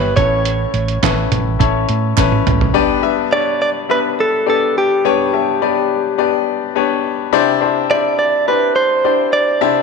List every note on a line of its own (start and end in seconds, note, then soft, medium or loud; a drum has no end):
0.00 0.12 G1 medium
0.00 0.20 B3 medium
0.00 0.17 E4 medium
0.00 0.20 G4 medium
0.00 0.16 B4 medium
0.00 0.20 B4 medium
0.00 0.16 C#5 medium
0.00 0.19 D5 medium
0.16 0.64 A1 loud
0.16 0.99 A2 medium
0.16 0.90 C#4 medium
0.16 0.90 E4 medium
0.16 0.90 A4 medium
0.16 2.13 C#5 medium
0.16 0.90 C#5 medium
0.16 kick loud
0.16 closed hi-hat medium
0.45 closed hi-hat medium
0.74 0.98 A1 loud
0.74 closed hi-hat medium
0.88 closed hi-hat soft
1.02 1.27 A1 medium
1.02 1.51 C#4 medium
1.02 1.51 E4 medium
1.02 1.51 A4 medium
1.02 1.51 B4 medium
1.02 kick loud
1.02 snare loud
1.02 clap medium
1.02 closed hi-hat medium
1.31 1.55 A1 medium
1.31 closed hi-hat medium
1.31 floor tom medium
1.59 1.84 A1 loud
1.59 2.08 C#4 medium
1.59 2.08 E4 medium
1.59 2.08 A4 medium
1.59 2.09 C#5 medium
1.59 kick loud
1.59 closed hi-hat medium
1.89 2.13 A2 medium
1.89 closed hi-hat medium
2.17 2.41 A1 loud
2.17 2.66 C#4 medium
2.17 2.66 E4 medium
2.17 2.66 A4 medium
2.17 2.66 B4 loud
2.17 kick loud
2.17 snare medium
2.17 clap medium
2.17 closed hi-hat medium
2.32 high tom medium
2.47 2.70 A1 loud
2.47 closed hi-hat medium
2.47 mid tom loud
2.61 floor tom medium
2.74 3.56 G2 medium
2.74 2.99 B3 loud
2.74 2.99 D4 loud
2.74 2.99 G4 loud
2.74 2.99 B4 loud
2.74 2.99 D5 loud
3.02 3.27 B3 medium
3.02 3.27 D4 medium
3.02 3.27 G4 medium
3.02 3.27 B4 medium
3.02 3.27 E5 loud
3.32 3.80 B3 medium
3.32 3.81 D4 medium
3.32 3.81 G4 medium
3.32 3.81 B4 medium
3.32 3.81 C#5 medium
3.32 3.61 D5 medium
3.62 3.69 D5 loud
3.89 4.38 B3 medium
3.89 4.38 D4 medium
3.89 4.38 G4 medium
3.89 4.38 B4 medium
3.89 3.99 B4 medium
3.89 4.38 E5 medium
4.20 4.48 A4 medium
4.46 4.95 B3 medium
4.46 4.95 D4 medium
4.46 4.95 G4 medium
4.46 4.77 A4 medium
4.46 4.95 B4 medium
4.46 4.95 D5 medium
4.78 6.44 G4 medium
5.05 5.86 G2 medium
5.05 5.28 B3 loud
5.05 5.28 D4 medium
5.05 5.29 G4 medium
5.05 5.29 B4 medium
5.05 5.29 C#5 loud
5.33 5.57 B3 medium
5.33 5.57 D4 medium
5.33 5.57 G4 medium
5.33 5.57 B4 medium
5.33 5.57 E5 medium
5.62 6.10 B3 medium
5.62 6.10 D4 medium
5.62 6.10 G4 medium
5.62 6.10 B4 medium
5.62 6.10 D5 medium
6.18 6.66 B3 medium
6.18 6.67 D4 medium
6.18 6.67 G4 medium
6.18 6.67 B4 medium
6.18 6.67 D5 loud
6.75 7.24 B3 loud
6.75 7.24 D4 medium
6.75 7.24 G4 medium
6.75 7.24 B4 medium
6.75 7.24 C#5 loud
7.33 8.15 C3 medium
7.33 7.57 D4 loud
7.33 7.57 E4 loud
7.33 7.57 G4 loud
7.33 7.57 C5 loud
7.33 7.57 D5 loud
7.61 7.85 D4 medium
7.61 7.85 E4 medium
7.61 7.85 G4 medium
7.61 7.85 C5 medium
7.61 7.86 D5 medium
7.90 8.38 D4 medium
7.90 8.38 E4 medium
7.90 8.38 G4 medium
7.90 8.38 C5 medium
7.90 8.18 D5 loud
7.90 8.38 E5 medium
8.19 8.48 D5 loud
8.48 8.96 D4 medium
8.48 8.96 E4 medium
8.48 8.96 G4 medium
8.48 8.75 B4 medium
8.48 8.96 C5 medium
8.48 8.96 D5 medium
8.76 9.33 C5 medium
9.04 9.53 D4 medium
9.04 9.53 E4 medium
9.04 9.53 G4 medium
9.04 9.53 C5 medium
9.04 9.53 D5 medium
9.33 9.82 D5 medium
9.61 9.82 C3 medium
9.61 9.82 D4 loud
9.61 9.82 E4 medium
9.61 9.82 G4 medium
9.61 9.82 C5 medium
9.61 9.82 E5 loud